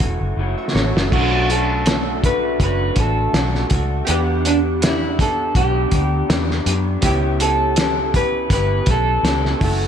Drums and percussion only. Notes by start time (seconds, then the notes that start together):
0.00 kick, closed hi-hat
0.76 snare
0.97 snare
1.12 kick, crash
1.50 closed hi-hat
1.86 snare, closed hi-hat
2.24 kick, closed hi-hat
2.60 kick, closed hi-hat
2.96 kick, closed hi-hat
3.34 snare, closed hi-hat
3.55 snare
3.70 kick, closed hi-hat
4.07 closed hi-hat
4.45 closed hi-hat
4.82 snare, closed hi-hat
5.19 kick, closed hi-hat
5.55 kick, closed hi-hat
5.91 kick, closed hi-hat
6.30 snare, closed hi-hat
6.51 snare
6.66 closed hi-hat
7.02 kick, closed hi-hat
7.40 closed hi-hat
7.76 snare, closed hi-hat
8.14 kick, closed hi-hat
8.50 kick, closed hi-hat
8.86 kick, closed hi-hat
9.25 snare, closed hi-hat
9.45 snare
9.61 kick, open hi-hat